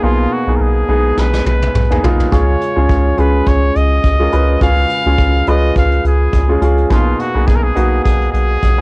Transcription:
Already playing: upright piano A#3 B3 D#4 G#4
0.03 analog synth bass B1, upright piano B2 A#3 B3 D#4 G#4, trumpet F4
0.33 trumpet F#4
0.47 analog synth bass B1, upright piano A#3 B3 D#4 G#4
0.56 analog synth bass B1, trumpet A#4
0.62 trumpet G#4
0.88 analog synth bass B1, upright piano G#3 B3 D#4 G#4
1.17 analog synth bass B1, trumpet B4, snare
1.33 snare
1.46 analog synth bass B1, trumpet B4, high tom
1.62 high tom
1.74 analog synth bass B1, mid tom
1.91 upright piano A#3 B3 D#4 G#4, mid tom
2.03 analog synth bass B1, upright piano A#3 B3 D#4 F4, floor tom
2.20 floor tom
2.32 analog synth bass C#2, upright piano C#3 G#3 C#4 F4 G#4, trumpet C#5, kick, closed hi-hat
2.61 closed hi-hat
2.76 analog synth bass C#2, upright piano G#3 C#4 F4 G#4
2.89 analog synth bass C#2, kick, closed hi-hat
3.17 analog synth bass C#2, upright piano G#3 C#4 F4 G#4, trumpet B4, closed hi-hat
3.46 analog synth bass C#2, trumpet C#5, kick, closed hi-hat
3.75 analog synth bass C#2, trumpet D#5, closed hi-hat
4.04 analog synth bass C#2, kick, closed hi-hat
4.19 upright piano G#3 C#4 F4 A#4
4.32 analog synth bass C#2, upright piano G#3 C#4 F4 B4, closed hi-hat
4.61 analog synth bass C#2, upright piano C#3 G#3 C#4 F4 G#4, trumpet F5, kick, closed hi-hat
4.90 closed hi-hat
5.06 analog synth bass C#2, upright piano G#3 C#4 F4 G#4
5.18 analog synth bass C#2, kick, closed hi-hat
5.47 analog synth bass C#2, upright piano G#3 C#4 F4 B4, trumpet D#5, closed hi-hat
5.75 analog synth bass C#2, trumpet F5, kick, closed hi-hat
5.92 closed hi-hat
6.04 analog synth bass C#2, trumpet G#4, closed hi-hat
6.33 analog synth bass C#2, kick, closed hi-hat
6.49 upright piano G#3 C#4 F4 G#4
6.61 analog synth bass C#2, upright piano G#3 C#4 F4 G#4, closed hi-hat
6.77 closed hi-hat
6.90 analog synth bass B1, upright piano B2 A#3 B3 D#4 G#4, trumpet F4, kick, closed hi-hat
7.19 trumpet F#4, closed hi-hat
7.34 analog synth bass B1, upright piano A#3 B3 D#4 G#4
7.47 analog synth bass B1, trumpet G#4, kick, closed hi-hat
7.56 trumpet A#4
7.63 trumpet G#4
7.75 analog synth bass B1, upright piano A#3 B3 D#4 F#4, closed hi-hat
8.04 analog synth bass B1, trumpet G#4, kick, closed hi-hat
8.22 closed hi-hat
8.32 analog synth bass B1, trumpet G#4, closed hi-hat
8.63 analog synth bass B1, kick, closed hi-hat
8.78 upright piano A#3

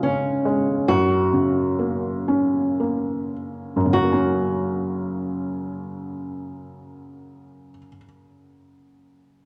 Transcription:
Already playing: felt piano C#3 G#3
0.03 felt piano C#3, nylon-string guitar C#4
0.45 felt piano G#3
0.88 felt piano F#2, nylon-string guitar F#4
1.33 felt piano C#3
1.79 felt piano A#3
2.28 felt piano C#4
2.80 felt piano A#3
3.76 felt piano F#2
3.85 felt piano C#3
3.93 felt piano F#3, nylon-string guitar F#4
4.03 felt piano A#3
4.12 felt piano C#4

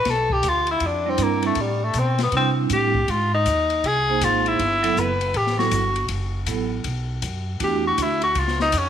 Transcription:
Already playing: tenor saxophone B4
0.05 upright bass B1, kick, snare, ride
0.10 tenor saxophone A4
0.30 tenor saxophone G4, kick
0.43 upright bass D2, kick, hi-hat pedal, ride
0.49 tenor saxophone F4
0.67 ride
0.71 tenor saxophone E4
0.80 upright bass F2, kick, ride
0.86 tenor saxophone D4
1.05 vibraphone G3 C4 D4 E4
1.10 tenor saxophone C4
1.18 upright bass G2, kick, hi-hat pedal, ride
1.23 tenor saxophone A#3
1.42 tenor saxophone A3, ride
1.55 upright bass A2, kick, ride
1.61 tenor saxophone G3
1.84 tenor saxophone A3
1.94 upright bass B2, kick, hi-hat pedal, ride
1.98 tenor saxophone C4
2.18 snare, ride
2.23 tenor saxophone B3
2.32 upright bass C3, vibraphone G3 C4 D4 E4, kick, ride
2.36 tenor saxophone C4
2.70 upright bass A2, tenor saxophone G4, kick, hi-hat pedal, ride
2.95 kick
3.08 upright bass G#2, tenor saxophone F4, kick, ride
3.34 tenor saxophone D#4
3.46 upright bass D#2, kick, hi-hat pedal, ride
3.70 ride
3.83 upright bass C2, tenor saxophone G#4, kick, ride
4.09 vibraphone A#3 D#4 G#4 C5
4.21 upright bass G#1, tenor saxophone F4, kick, hi-hat pedal, ride
4.46 tenor saxophone E4, ride
4.59 upright bass G1, kick, ride
4.83 vibraphone F#3 B3 E4 A4, ride
4.96 upright bass F#1, tenor saxophone B4, kick, hi-hat pedal
5.21 ride
5.34 upright bass A1, tenor saxophone G4, kick, ride
5.47 snare
5.58 vibraphone F#3 B3 E4 A4, tenor saxophone F#4, snare
5.71 upright bass G1, kick, hi-hat pedal, ride
5.96 ride
6.08 upright bass F#1, kick, ride
6.46 upright bass A1, vibraphone F#3 B3 E4 A4, kick, hi-hat pedal, ride
6.84 upright bass B1, kick, ride
7.22 upright bass F#2, kick, hi-hat pedal, ride
7.60 upright bass E2, vibraphone A3 D4 E4 F#4, tenor saxophone G4, kick, ride
7.87 tenor saxophone F#4
7.98 upright bass D2, kick, hi-hat pedal, ride
8.02 tenor saxophone E4
8.22 tenor saxophone F#4, ride
8.35 upright bass C#2, tenor saxophone F4, kick, ride
8.48 snare
8.60 tenor saxophone D#4, snare
8.72 upright bass F2, kick, hi-hat pedal, ride
8.77 tenor saxophone C#4

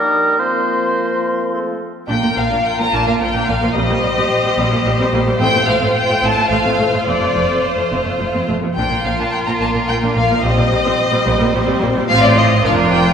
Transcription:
Already playing: bassoon G3, french horn section A#3 D#4, clarinet A#4, oboe A#4, flute D#6
0.39 bassoon F3, french horn section C4, clarinet A#4, oboe C5, flute C6
1.53 french horn section A3, clarinet A4, flute C6
2.10 double bass section A#1, cello section A#2, viola section A#3 D4, violin section F4 A#4 G5
2.23 cello section A#2, viola section A#3
2.37 double bass section A#1, cello section A#2, viola section F3 A#3, violin section F5
2.52 cello section A#2, viola section A#3 D4
2.66 violin section G5
2.79 cello section A#2, viola section F3 A#3, violin section A#5
2.93 double bass section A#1, cello section A#2, viola section A#3 D4, violin section A5
3.07 cello section A#2, viola section A#3, violin section F5
3.21 double bass section A#1, cello section A#2, viola section F3 A#3, violin section G5
3.34 cello section A#2, viola section A#3 D4
3.49 double bass section A#1, cello section A#2, viola section A#3, violin section F5
3.62 cello section A#2, viola section F3 A#3
3.76 double bass section A#1, cello section A#2, viola section G3 C4, violin section G4 C5 D#5
3.90 cello section A#2, viola section G3 A#3
4.03 double bass section A#1, cello section A#2, viola section G3
4.17 cello section A#2, viola section G3 C4
4.45 cello section A#2, viola section G3
4.58 double bass section A#1, cello section A#2, viola section G3 C4
4.72 cello section A#2, viola section G3 A#3
4.85 double bass section A#1, cello section A#2, viola section G3
4.99 cello section A#2, viola section G3 C4
5.13 double bass section A#1, cello section A#2, viola section G3 A#3
5.27 cello section A#2, viola section G3
5.40 double bass section A1, cello section A2, viola section A3 C4, violin section F4 G5
5.54 cello section A2, viola section A3
5.68 double bass section A1, cello section A2, viola section F3 A3, violin section F5
5.82 cello section A2, viola section A3 C4
5.95 violin section G5
6.09 cello section A2, viola section F3 A3
6.23 double bass section A1, cello section A2, viola section A3 C4, violin section A5
6.37 cello section A2, viola section A3
6.51 double bass section A1, cello section A2, viola section F3 A3, violin section F5
6.64 cello section A2, viola section A3 C4
6.78 double bass section A1, cello section A2, viola section A3
6.93 cello section A2, viola section F3 A3
7.07 double bass section F1, cello section F2, viola section A3 C4, violin section C5 D5
7.21 cello section F2, viola section A3
7.35 double bass section F1, cello section F2, viola section F3 A3
7.49 cello section F2, viola section A3 C4
7.64 violin section C5
7.77 cello section F2, viola section F3 A3
7.91 double bass section F1, cello section F2, viola section A3 C4
8.05 cello section F2, viola section A3
8.20 double bass section F1, cello section F2, viola section F3 A3
8.34 cello section F2, viola section A3 C4
8.48 double bass section F1, cello section F2, viola section A3
8.63 cello section F2, viola section F3 A3
8.76 double bass section A#1, cello section A#2, viola section A#3 D4, violin section F4 A#4 G5
8.91 cello section A#2, viola section A#3
9.04 double bass section A#1, cello section A#2, viola section F3 A#3, violin section F5
9.19 cello section A#2, viola section A#3 D4, violin section A5
9.33 violin section G5
9.47 cello section A#2, viola section F3 A#3, violin section A#5
9.61 double bass section A#1, cello section A#2, viola section A#3 D4, violin section A5
9.75 cello section A#2, viola section A#3
9.88 double bass section A#1, cello section A#2, viola section F3 A#3, violin section G5
10.02 cello section A#2, viola section A#3 D4
10.16 double bass section A#1, cello section A#2, viola section A#3, violin section F5
10.30 cello section A#2, viola section F3 A#3
10.43 double bass section A#1, cello section A#2, viola section G3 C4, violin section C4 C5 D#5
10.58 cello section A#2, viola section G3 A#3
10.71 double bass section A#1, cello section A#2, viola section G3
10.85 cello section A#2, viola section G3 C4
11.13 cello section A#2, viola section G3
11.26 double bass section A#1, cello section A#2, viola section G3 C4
11.40 cello section A#2, viola section G3 A#3
11.53 double bass section A#1, cello section A#2, viola section G3
11.67 cello section A#2, viola section G3 C4
11.81 double bass section A#1, cello section A#2, viola section G3 A#3
11.95 cello section A#2, viola section G3
12.08 double bass section A1, cello section A2, viola section F3 C4, violin section F4 C5 F5
12.23 violin section D5
12.37 violin section D#5
12.63 double bass section F1, cello section F2, viola section F3 D4, violin section F4 A#4 F5
12.92 violin section G5

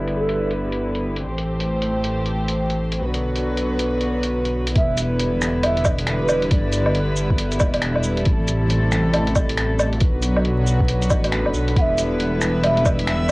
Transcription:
Already playing: detuned saw bass G1, string section D3 G3 B3 E4 B4
0.08 closed hi-hat
0.15 flute A4
0.29 closed hi-hat
0.51 closed hi-hat
0.72 closed hi-hat
0.95 closed hi-hat
1.16 closed hi-hat
1.26 detuned saw bass A1, string section E3 A3 C4 G4 C5
1.38 closed hi-hat
1.60 closed hi-hat
1.82 closed hi-hat
2.04 closed hi-hat
2.26 closed hi-hat
2.48 closed hi-hat
2.70 closed hi-hat
2.92 closed hi-hat
3.01 detuned saw bass B1, string section D3 F#3 B3 F#4 B4
3.14 closed hi-hat
3.35 closed hi-hat
3.57 closed hi-hat
3.79 closed hi-hat
4.01 closed hi-hat
4.23 closed hi-hat
4.45 closed hi-hat
4.67 closed hi-hat
4.75 detuned saw bass E1, string section D3 G3 B3 E4 B4, flute E5, kick, closed hi-hat
4.97 closed hi-hat, cabasa
5.19 closed hi-hat
5.42 finger snap, cabasa
5.63 flute E5, closed hi-hat, low woodblock
5.77 closed hi-hat
5.85 kick, cabasa, low woodblock
5.99 closed hi-hat
6.07 finger snap, closed hi-hat
6.21 flute B4
6.29 cabasa, low woodblock
6.42 closed hi-hat
6.51 detuned saw bass G1, string section B3, flute D5, kick, closed hi-hat
6.72 closed hi-hat, cabasa
6.86 low woodblock
6.95 closed hi-hat
7.17 cabasa
7.31 kick
7.38 detuned saw bass G1, closed hi-hat
7.52 closed hi-hat, cabasa
7.60 detuned saw bass E1, kick, cabasa, low woodblock
7.74 closed hi-hat, low woodblock
7.82 finger snap, closed hi-hat
7.96 low woodblock
8.04 cabasa
8.17 closed hi-hat
8.26 detuned saw bass A1, string section C3 A3 A4, kick, closed hi-hat
8.48 closed hi-hat, cabasa
8.70 closed hi-hat
8.92 finger snap, cabasa
9.14 closed hi-hat, low woodblock
9.27 closed hi-hat
9.36 kick, cabasa, low woodblock
9.50 closed hi-hat
9.58 finger snap, closed hi-hat
9.79 cabasa, low woodblock
9.93 closed hi-hat
10.00 detuned saw bass B1, string section D3 F#3 B3 F#4 B4, kick, closed hi-hat
10.23 closed hi-hat, cabasa
10.37 low woodblock
10.45 closed hi-hat
10.67 cabasa
10.81 kick
10.88 detuned saw bass B1, closed hi-hat
11.02 closed hi-hat, cabasa
11.10 detuned saw bass A1, kick, cabasa, low woodblock
11.24 closed hi-hat, low woodblock
11.32 finger snap, closed hi-hat
11.46 detuned saw bass F#1, low woodblock
11.54 detuned saw bass B1, cabasa
11.68 closed hi-hat
11.76 detuned saw bass E1, string section G3 E4, synth texture E5, flute F#5, kick, closed hi-hat
11.81 flute E5
11.98 closed hi-hat, cabasa
12.20 closed hi-hat
12.41 finger snap, cabasa
12.63 flute E5, closed hi-hat, low woodblock
12.77 closed hi-hat
12.85 kick, cabasa, low woodblock
12.99 closed hi-hat
13.07 finger snap, closed hi-hat

